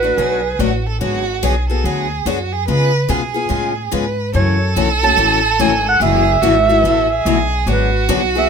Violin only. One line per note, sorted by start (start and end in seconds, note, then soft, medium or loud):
0.00 0.19 F#4 medium
0.17 0.61 G#4 medium
0.60 0.88 F#4 medium
0.86 1.01 A4 medium
1.02 1.45 F#4 loud
1.44 1.69 G#4 medium
1.70 1.86 A4 medium
1.85 2.28 G#4 medium
2.26 2.54 F#4 medium
2.53 2.68 G#4 medium
2.68 3.11 B4 loud
3.10 3.95 G#4 medium
3.93 4.34 B4 medium
4.35 6.01 A4 loud
6.00 6.43 G#4 loud
6.42 6.82 F#4 medium
6.80 7.11 A4 medium
6.80 6.85 B4 medium
7.10 7.69 G#4 loud
7.67 8.49 F#4 loud